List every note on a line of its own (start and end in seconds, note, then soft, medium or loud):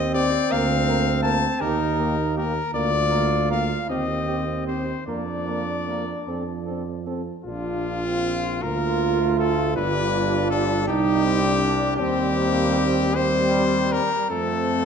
0.00 0.38 D#2 medium
0.00 1.63 C4 loud
0.00 0.14 D#5 loud
0.13 0.31 C4 medium
0.13 0.29 G4 medium
0.13 0.54 D5 loud
0.50 1.48 D2 loud
0.50 0.68 A#3 medium
0.50 0.66 A#4 medium
0.50 1.22 F5 loud
0.88 1.04 A#3 medium
0.88 1.05 A#4 medium
1.23 1.41 A#3 medium
1.23 1.39 A#4 medium
1.23 1.63 A5 loud
1.60 2.61 D#2 medium
1.60 1.78 A#3 medium
1.60 2.46 D#4 medium
1.60 1.76 G4 medium
1.60 2.36 A#4 loud
1.99 2.16 A#3 medium
1.99 2.15 G4 medium
2.36 2.53 A#3 medium
2.36 2.52 G4 medium
2.36 2.74 A#4 loud
2.74 3.75 D2 medium
2.74 2.91 A#3 medium
2.74 3.91 F4 loud
2.74 2.91 A#4 medium
2.74 3.49 D5 loud
3.11 3.28 A#3 medium
3.11 3.27 A#4 medium
3.50 3.67 A#3 medium
3.50 3.66 A#4 medium
3.50 3.89 F5 loud
3.89 4.93 D#2 medium
3.89 5.07 C4 medium
3.89 4.06 C4 medium
3.89 4.06 G4 medium
3.89 4.67 D#5 loud
4.28 4.45 C4 medium
4.28 4.44 G4 medium
4.68 4.85 C4 medium
4.68 4.84 G4 medium
4.68 5.06 C5 medium
5.07 6.13 F2 medium
5.07 5.23 A#3 medium
5.07 6.83 D4 medium
5.07 5.24 A#4 medium
5.07 7.02 D5 loud
5.47 5.64 A#3 medium
5.47 5.63 A#4 medium
5.88 6.04 A#3 medium
5.88 6.05 A#4 medium
6.28 7.32 F2 medium
6.28 6.44 C4 medium
6.28 6.44 A4 medium
6.66 6.84 C4 medium
6.66 6.82 A4 medium
7.06 7.22 C4 medium
7.06 7.22 A4 medium
7.45 8.65 A#1 medium
7.45 8.06 D4 medium
7.45 8.64 F4 loud
7.45 8.59 F4 medium
8.05 8.63 C4 medium
8.62 9.77 D2 medium
8.62 9.22 A#3 medium
8.62 9.72 F4 loud
8.62 9.74 F4 medium
8.62 9.38 A#4 loud
9.21 9.77 A3 medium
9.39 9.76 A4 loud
9.76 10.90 G1 medium
9.76 10.88 G3 medium
9.76 10.86 D4 loud
9.76 10.86 F4 medium
9.76 10.50 B4 loud
10.50 10.87 A4 loud
10.88 11.99 C2 medium
10.88 11.97 G3 medium
10.88 11.24 D#4 loud
10.88 11.43 D#4 medium
10.88 11.97 G4 loud
11.25 11.61 C4 loud
11.43 12.01 D4 medium
11.63 12.02 D4 loud
11.97 13.99 D#2 medium
11.97 13.15 G3 loud
11.97 13.16 C4 loud
11.97 12.38 C4 loud
11.97 13.17 G4 loud
12.39 12.79 A#3 medium
12.78 13.16 C4 loud
13.16 14.29 G3 loud
13.16 14.02 G3 loud
13.16 14.01 C4 loud
13.16 13.94 C5 loud
13.92 14.30 A#4 loud
14.31 14.85 F2 medium
14.31 14.85 F3 medium
14.31 14.85 A3 medium
14.31 14.85 C4 medium
14.31 14.85 A4 loud